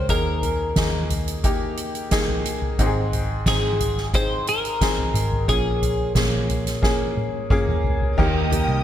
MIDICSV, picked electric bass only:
0, 0, Header, 1, 2, 480
1, 0, Start_track
1, 0, Tempo, 673854
1, 67, Time_signature, 4, 2, 24, 8
1, 6293, End_track
2, 0, Start_track
2, 0, Title_t, "Picked electric bass"
2, 0, Program_c, 0, 34
2, 65, Note_on_c, 0, 39, 100
2, 518, Note_off_c, 0, 39, 0
2, 542, Note_on_c, 0, 39, 92
2, 1716, Note_off_c, 0, 39, 0
2, 1986, Note_on_c, 0, 32, 91
2, 2438, Note_off_c, 0, 32, 0
2, 2466, Note_on_c, 0, 32, 94
2, 3638, Note_off_c, 0, 32, 0
2, 3663, Note_on_c, 0, 32, 84
2, 3888, Note_off_c, 0, 32, 0
2, 3905, Note_on_c, 0, 34, 104
2, 4358, Note_off_c, 0, 34, 0
2, 4382, Note_on_c, 0, 34, 88
2, 5556, Note_off_c, 0, 34, 0
2, 5824, Note_on_c, 0, 39, 102
2, 6160, Note_off_c, 0, 39, 0
2, 6186, Note_on_c, 0, 36, 84
2, 6293, Note_off_c, 0, 36, 0
2, 6293, End_track
0, 0, End_of_file